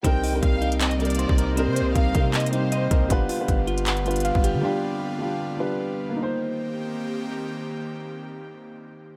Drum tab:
HH |x-----------o-----------x-----------x-----x-----x-----x-----x--x--x--x--x-----------x-----------|x-----------x-----------x-----------x-----------x---x---x---x-----------x-----------x-----------|x-----------o-----------x-----------x-----x-----x-----x-----x--x--x--x--x-----------x-----------|------------------------------------------------------------------------------------------------|
CP |------------------------------------------------x-----------------------------------------------|------------------------------------------------x-----------------------------------------------|------------------------------------------------x-----------------------------------------------|------------------------------------------------------------------------------------------------|
BD |o-----------------------o-----------------------------------------------------o-----------------|------------------------o-----------o-----------------------------------------------o-----------|o-----------------------o-----------------------------------------------------o-----------------|------------------------------------------------------------------------------------------------|

HH |------------------------------------------------------------------------------------------------|------------------------------------------------------------------------------------------------|
CP |------------------------------------------------------------------------------------------------|------------------------------------------------------------------------------------------------|
BD |------------------------------------------------------------------------------------------------|------------------------------------------------------------------------------------------------|